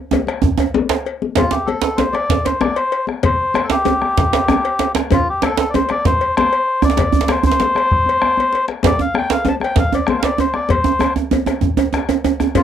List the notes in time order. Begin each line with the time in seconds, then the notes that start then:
0.11 cowbell, djembe slap, djembe tone, djembe bass
0.27 bombo rim, cowbell, djembe slap, djembe tone
0.42 bombo low, djembe tone
0.58 cowbell, djembe slap, djembe tone
0.74 djembe slap, djembe tone, djembe bass
0.89 bombo rim, cowbell, djembe slap
1.05 bombo rim, cowbell, djembe slap
1.22 djembe slap, djembe tone
1.35 F4, bombo low, cowbell, djembe slap
1.38 djembe slap, djembe bass
1.51 G4, djembe slap
1.66 A4, cowbell, djembe slap, djembe tone
1.82 A4, djembe slap
1.96 C5, cowbell, djembe slap, djembe bass
2.12 D5, bombo rim, cowbell, djembe slap, djembe tone
2.29 bombo low, djembe slap
2.45 C5, cowbell, djembe slap
2.61 D5, bombo rim, djembe slap, djembe tone, djembe bass
2.76 C5, bombo rim, cowbell
2.92 bombo rim, cowbell
3.07 bombo rim, djembe tone
3.23 C5, bombo rim, bombo low, cowbell, djembe slap, djembe bass
3.54 bombo rim, cowbell, djembe slap, djembe tone
3.64 A4
3.70 G4, djembe slap
3.85 cowbell, djembe slap, djembe tone, djembe bass
4.02 bombo rim, djembe slap, djembe tone
4.18 bombo low, djembe slap
4.33 cowbell, djembe slap
4.48 bombo rim, djembe slap, djembe tone, djembe bass
4.64 bombo rim, cowbell
4.79 bombo rim, cowbell, djembe slap
4.95 bombo rim, djembe slap, djembe tone
5.11 F4, bombo rim, bombo low, cowbell, djembe slap, djembe tone, djembe bass
5.29 G4
5.42 A4, bombo rim, cowbell, djembe slap, djembe tone
5.57 A4, djembe slap
5.70 D5
5.74 C5, cowbell, djembe slap, djembe tone, djembe bass
5.89 D5, bombo rim, cowbell, djembe slap, djembe tone
6.05 C5, bombo low, djembe slap
6.21 cowbell
6.37 C5, bombo rim, djembe slap, djembe tone, djembe bass
6.53 bombo rim, cowbell
6.68 bombo rim
6.82 D5, bombo rim, djembe tone, djembe bass
6.90 djembe slap
6.97 bombo rim, bombo low, cowbell, djembe slap, djembe bass
7.13 djembe slap, djembe bass
7.21 djembe slap
7.28 C5, bombo rim, cowbell, djembe slap, djembe tone
7.43 C5, bombo rim, djembe bass
7.52 djembe slap
7.60 bombo rim, djembe slap, djembe bass
7.75 bombo rim, cowbell, djembe tone
7.91 bombo low, djembe slap
8.06 bombo rim, cowbell, djembe bass
8.22 bombo rim, djembe bass
8.37 cowbell, djembe bass
8.53 cowbell, djembe slap
8.68 bombo rim, djembe slap
8.83 D5, bombo rim, bombo low, cowbell, djembe slap, djembe bass
8.99 F5, djembe tone
9.14 G5, bombo rim, djembe slap, djembe tone
9.30 F5, djembe slap
9.45 cowbell, djembe slap, djembe tone, djembe bass
9.49 A5
9.60 G5, bombo rim, djembe slap, djembe tone
9.64 cowbell
9.76 F5, bombo low, djembe slap
9.92 D5, cowbell, djembe tone
10.07 C5, bombo rim, djembe slap, djembe tone, djembe bass
10.19 F5, bombo rim, djembe slap
10.23 D5, cowbell
10.38 C5, bombo rim, cowbell, djembe tone
10.54 D5, bombo rim, djembe tone
10.69 C5, bombo rim, bombo low, cowbell, djembe slap, djembe bass
10.84 djembe tone
10.99 bombo rim, cowbell, djembe slap, djembe tone
11.16 djembe tone
11.31 cowbell, djembe tone, djembe bass
11.46 bombo rim, cowbell, djembe slap, djembe tone
11.61 bombo low, djembe tone
11.77 cowbell, djembe tone
11.93 bombo rim, djembe slap, djembe tone
12.09 bombo rim, cowbell, djembe tone
12.24 bombo rim, cowbell, djembe tone
12.40 bombo rim, djembe tone
12.55 F4, bombo rim, bombo low, cowbell, djembe slap, djembe tone, djembe bass